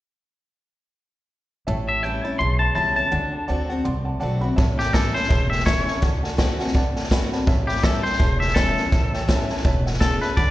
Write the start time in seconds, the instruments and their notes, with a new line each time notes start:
1.67 upright bass A1, steel-string acoustic guitar A2, upright piano C#5 E5 A5
1.88 upright piano C#5 E5 A5, clean electric guitar E5
2.02 steel-string acoustic guitar E3 G3 C#4 E4, upright piano C#5 E5 A5, clean electric guitar G5
2.24 steel-string acoustic guitar C#4 E4, upright piano C#5 E5 B5, clean electric guitar A5
2.39 upright bass B1, steel-string acoustic guitar E2, upright piano C#5 E5 A5, clean electric guitar C6
2.59 upright piano C#5 E5 B5, clean electric guitar A5
2.75 upright bass C#2, steel-string acoustic guitar E3 G3 C#4 E4, upright piano C#5 E5 B5, clean electric guitar A5
2.96 steel-string acoustic guitar C#4 E4, upright piano C#5 E5 A5, clean electric guitar A5
3.11 upright bass D2, steel-string acoustic guitar D3, upright piano D5 F#5 A5
3.32 upright piano D5 F#5 A5
3.48 upright bass D2, steel-string acoustic guitar D3 A3 C4 F#4, upright piano D5 F#5 A5
3.69 steel-string acoustic guitar C4 F#4, upright piano D5 F#5 A5
3.84 upright bass C2, steel-string acoustic guitar A2, upright piano D5 F#5 C6
4.05 upright piano D5 F#5 A5
4.20 upright bass B1, steel-string acoustic guitar D3 A3 C4 F#4, upright piano D5 F#5 A5
4.41 steel-string acoustic guitar C4 F#4, upright piano D5 F#5 B5
4.56 upright bass A1, steel-string acoustic guitar A2, upright piano C#5 E5 A5, kick, snare
4.77 clean electric guitar G4, upright piano E5 A5, snare
4.93 steel-string acoustic guitar E3 G3 C#4 E4, clean electric guitar A4, upright piano C#5 E5 A5, kick, snare, hi-hat pedal
5.14 steel-string acoustic guitar C#4 E4, clean electric guitar C5, upright piano C#5 E5 A5, snare
5.23 snare
5.29 upright bass E1, steel-string acoustic guitar E2, upright piano C#5 E5 A5, kick, snare
5.50 upright piano C#5 E5 G5, clean electric guitar E5, snare
5.59 snare
5.65 steel-string acoustic guitar E3 G3 C#4 E4, clean electric guitar C#5, upright piano C#5 E5 A5, kick, snare, hi-hat pedal
5.87 steel-string acoustic guitar C#4 E4, upright piano C#5 E5 A5, snare
6.02 upright bass D2, steel-string acoustic guitar D3, upright piano D5 F#5 A5, kick, snare
6.23 upright piano D5 F#5 A5, snare
6.37 steel-string acoustic guitar D3 A3 C4 F#4, upright piano D5 F#5 A5, kick, snare, hi-hat pedal
6.59 steel-string acoustic guitar C4 F#4, upright piano D5 F#5 A5, snare
6.67 snare
6.74 upright bass A1, steel-string acoustic guitar A2, upright piano D5 F#5 A5, kick, snare
6.96 upright piano D5 F#5 A5, snare
7.04 snare
7.10 steel-string acoustic guitar D3 A3 C4 F#4, upright piano D5 F#5 B5, kick, snare, hi-hat pedal
7.30 steel-string acoustic guitar C4 F#4, upright piano D5 F#5 A5 B5, snare
7.47 upright bass A1, steel-string acoustic guitar A2, upright piano C#5 E5 A5, kick, snare
7.67 clean electric guitar G4, upright piano C#5 E5 B5, snare
7.76 snare
7.82 steel-string acoustic guitar E3 G3 C#4 E4, clean electric guitar A4, upright piano C#5 E5 A5, kick, snare, hi-hat pedal
8.03 steel-string acoustic guitar C#4 E4, clean electric guitar C5, upright piano E5 G5, snare
8.13 snare
8.19 upright bass E1, steel-string acoustic guitar E2, upright piano C#5 E5 A5, kick, snare
8.40 upright piano C#5 E5 A5, clean electric guitar E5, snare
8.48 snare
8.54 steel-string acoustic guitar E3 G3 C#4 E4, clean electric guitar A4, upright piano C#5 E5 B5, kick, snare, hi-hat pedal
8.77 steel-string acoustic guitar C#4 E4, upright piano C#5 E5 A5, snare
8.92 upright bass A1, steel-string acoustic guitar A2, upright piano C#5 E5 A5, kick, snare
9.13 upright piano C#5 E5 G5, snare
9.28 steel-string acoustic guitar E3 G3 C#4 E4, upright piano C#5 E5 A5, kick, snare, hi-hat pedal
9.49 steel-string acoustic guitar C#4 E4, upright piano C#5 E5 A5, snare
9.57 snare
9.64 upright bass E1, steel-string acoustic guitar B2, upright piano C#5 E5 A5, kick, snare
9.86 upright piano C#5 E5 F#5, snare
9.93 snare
10.00 steel-string acoustic guitar C#3, clean electric guitar A4, upright piano C#5 E5 A5, kick, snare, hi-hat pedal
10.21 clean electric guitar B4, upright piano C#5 E5 A5, snare
10.37 upright bass D2, steel-string acoustic guitar D3, clean electric guitar D5, upright piano D5 F#5 A5, kick, snare